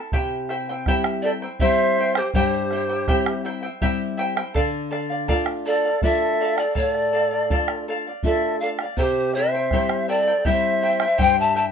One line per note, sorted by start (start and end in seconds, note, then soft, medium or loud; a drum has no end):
0.00 0.12 E4 soft
0.00 0.13 A4 medium
0.00 0.12 A5 medium
0.12 0.85 C3 medium
0.12 0.49 E4 medium
0.12 0.50 G4 medium
0.12 0.49 C5 medium
0.12 0.48 E5 medium
0.12 0.50 G5 loud
0.12 bombo low medium
0.49 0.68 E4 medium
0.49 0.68 C5 medium
0.49 0.68 E5 medium
0.49 0.68 G5 medium
0.49 bombo rim soft
0.69 0.87 E4 medium
0.69 0.87 C5 medium
0.69 0.87 G5 medium
0.86 1.46 G3 medium
0.86 1.46 C4 medium
0.86 1.46 E4 medium
0.86 1.23 E4 loud
0.86 1.24 G4 loud
0.86 1.23 C5 loud
0.86 1.23 E5 loud
0.86 1.24 G5 loud
0.86 bombo rim soft
0.86 bombo low medium
1.04 bombo rim medium
1.22 1.42 E4 medium
1.22 1.32 A4 medium
1.22 1.41 C5 medium
1.22 1.31 D5 medium
1.22 1.42 E5 medium
1.22 1.41 G5 medium
1.42 1.60 E4 soft
1.42 1.60 C5 soft
1.42 1.60 G5 soft
1.59 2.20 G3 medium
1.59 2.20 C4 medium
1.59 2.20 E4 medium
1.59 1.98 E4 medium
1.59 1.98 G4 medium
1.59 2.19 C5 loud
1.59 1.98 C5 medium
1.59 2.17 E5 loud
1.59 1.97 E5 medium
1.59 1.98 G5 loud
1.59 bombo low medium
1.98 2.17 E4 medium
1.98 2.17 C5 medium
1.98 2.16 E5 medium
1.98 2.17 G5 medium
2.15 2.34 E4 soft
2.15 2.34 G4 medium
2.15 2.34 C5 medium
2.15 2.35 C5 soft
2.15 2.35 G5 medium
2.15 bombo rim medium
2.34 3.06 G2 medium
2.34 2.71 E4 medium
2.34 3.41 G4 medium
2.34 2.71 G4 medium
2.34 3.41 C5 loud
2.34 2.72 C5 medium
2.34 2.71 E5 medium
2.34 2.72 G5 medium
2.34 bombo low medium
2.71 2.90 E4 medium
2.71 2.89 C5 medium
2.71 2.90 E5 medium
2.71 2.88 G5 medium
2.71 bombo rim soft
2.89 3.07 E4 soft
2.89 3.08 C5 soft
2.89 3.08 G5 medium
3.08 3.67 G3 medium
3.08 3.68 C4 medium
3.08 3.44 E4 medium
3.08 3.68 E4 medium
3.08 3.45 G4 medium
3.08 3.45 C5 loud
3.08 3.44 E5 medium
3.08 3.45 G5 loud
3.08 bombo rim soft
3.08 bombo low medium
3.26 bombo rim medium
3.45 3.63 E4 medium
3.45 3.62 C5 medium
3.45 3.63 E5 medium
3.45 3.61 G5 medium
3.63 3.81 E4 medium
3.63 3.81 C5 medium
3.63 3.81 G5 medium
3.82 4.41 G3 medium
3.82 4.41 C4 medium
3.82 4.17 E4 loud
3.82 4.41 E4 medium
3.82 4.19 G4 loud
3.82 4.18 C5 medium
3.82 4.16 E5 medium
3.82 4.18 G5 loud
3.82 bombo low medium
4.17 4.36 E4 medium
4.17 4.35 C5 medium
4.17 4.37 E5 medium
4.17 4.35 G5 medium
4.36 4.54 E4 medium
4.36 4.55 C5 medium
4.36 4.55 G5 medium
4.36 bombo rim medium
4.54 5.28 D3 medium
4.54 4.89 A4 loud
4.54 4.90 D5 loud
4.54 4.91 F5 loud
4.54 bombo low medium
4.91 5.10 A4 medium
4.91 5.11 D5 medium
4.91 5.09 F5 medium
4.91 bombo rim soft
5.10 5.28 D5 soft
5.10 5.28 F5 medium
5.28 5.88 A3 medium
5.28 5.89 D4 medium
5.28 5.89 F4 medium
5.28 5.65 A4 medium
5.28 5.66 D5 loud
5.28 5.66 F5 loud
5.28 bombo rim soft
5.28 bombo low medium
5.46 bombo rim medium
5.66 5.85 A4 medium
5.66 6.04 A4 medium
5.66 6.05 D5 loud
5.66 5.85 D5 medium
5.66 5.84 F5 medium
5.85 6.03 D5 soft
5.85 6.03 F5 medium
6.02 6.62 A3 medium
6.02 6.62 D4 medium
6.02 6.62 F4 medium
6.02 6.40 A4 medium
6.02 6.08 B4 medium
6.02 6.40 D5 medium
6.02 6.59 E5 loud
6.02 bombo low medium
6.07 6.60 A4 loud
6.41 6.59 A4 medium
6.41 6.58 D5 medium
6.41 6.57 F5 medium
6.58 6.78 A4 medium
6.58 6.76 D5 medium
6.58 6.74 D5 soft
6.58 6.75 F5 medium
6.58 bombo rim soft
6.75 7.48 A2 medium
6.75 7.12 A4 medium
6.75 6.90 C#5 loud
6.75 7.12 D5 medium
6.75 7.13 F5 medium
6.75 bombo rim soft
6.75 bombo low medium
6.80 7.85 A4 medium
6.90 7.84 D5 loud
6.95 bombo rim soft
7.13 7.32 A4 medium
7.13 7.32 D5 medium
7.13 7.30 F5 medium
7.31 7.50 D5 soft
7.31 7.50 F5 medium
7.50 8.10 A3 medium
7.50 8.09 D4 soft
7.50 8.10 F4 medium
7.50 7.87 A4 medium
7.50 7.88 D5 medium
7.50 7.88 F5 medium
7.50 bombo low medium
7.68 bombo rim medium
7.88 8.06 A4 medium
7.88 8.07 D5 medium
7.88 8.06 F5 medium
8.07 8.26 D5 soft
8.07 8.25 F5 medium
8.23 8.83 A3 medium
8.23 8.83 D4 medium
8.23 8.84 F4 medium
8.23 8.59 A4 medium
8.23 8.61 A4 medium
8.23 8.58 E5 medium
8.23 bombo low medium
8.27 8.62 D5 medium
8.60 8.80 A4 medium
8.60 8.71 D5 medium
8.60 8.81 D5 medium
8.60 8.69 F5 medium
8.60 8.80 F5 medium
8.79 8.98 F5 medium
8.79 bombo rim medium
8.83 8.98 D5 soft
8.97 9.69 C3 medium
8.97 9.35 E4 medium
8.97 9.35 G4 medium
8.97 9.04 A4 medium
8.97 9.36 C5 medium
8.97 9.35 C5 medium
8.97 9.35 E5 medium
8.97 9.36 G5 medium
8.97 bombo low medium
9.03 9.37 G4 medium
9.34 9.54 E4 medium
9.34 10.10 C5 medium
9.34 9.54 C5 medium
9.34 10.10 E5 medium
9.34 9.54 E5 medium
9.34 9.53 G5 medium
9.34 bombo rim soft
9.54 9.72 E4 soft
9.54 9.72 C5 soft
9.54 9.72 G5 medium
9.71 10.31 G3 medium
9.71 10.31 C4 medium
9.71 10.32 E4 medium
9.71 10.08 E4 medium
9.71 10.09 G4 medium
9.71 10.08 C5 medium
9.71 10.07 E5 medium
9.71 10.08 G5 medium
9.71 bombo rim soft
9.71 bombo low medium
9.89 bombo rim medium
10.08 10.27 E4 medium
10.08 10.49 A4 medium
10.08 10.26 C5 medium
10.08 10.48 D5 loud
10.08 10.27 E5 medium
10.08 10.26 G5 medium
10.27 10.44 E4 soft
10.27 10.45 C5 soft
10.27 10.45 G5 medium
10.45 11.05 G3 medium
10.45 11.05 C4 medium
10.45 10.82 E4 medium
10.45 11.05 E4 medium
10.45 10.82 G4 medium
10.45 10.82 C5 medium
10.45 10.53 D5 medium
10.45 10.81 E5 medium
10.45 11.22 E5 medium
10.45 10.82 G5 medium
10.45 bombo low medium
10.52 11.21 C5 medium
10.82 11.01 E4 medium
10.82 11.01 C5 medium
10.82 11.01 E5 medium
10.82 11.00 G5 medium
11.00 11.17 E4 soft
11.00 11.18 C5 soft
11.00 11.17 G5 medium
11.00 bombo rim medium
11.18 11.72 G2 medium
11.18 11.54 E4 medium
11.18 11.56 G4 medium
11.18 11.55 C5 medium
11.18 11.38 C5 medium
11.18 11.53 E5 medium
11.18 11.55 G5 medium
11.18 11.38 G5 loud
11.18 bombo low medium
11.39 11.55 E5 medium
11.39 11.56 A5 loud
11.54 11.72 E4 medium
11.54 11.72 C5 medium
11.54 11.72 E5 medium
11.54 11.72 G5 medium
11.54 11.65 A5 medium
11.54 bombo rim soft
11.58 11.66 E5 medium